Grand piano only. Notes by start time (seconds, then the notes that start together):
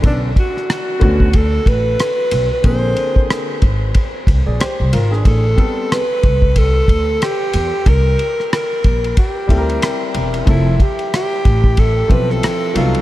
0.02 D3 B3 C#4 A4
1.00 D3 B3 C#4 F#4
2.62 C#3 A#3 C4 G#4
2.69 D3
4.46 G#4 D5
4.60 G4 C5
4.92 F4 A#4
5.11 D4 G#4
5.56 G3 B3 C4 A4
9.47 G3 C4 E4 A4
9.57 A#4
10.45 F3 C4 E4 A4
12.08 F3 C4 E4 A4
12.74 F#3 B3 D#4 A4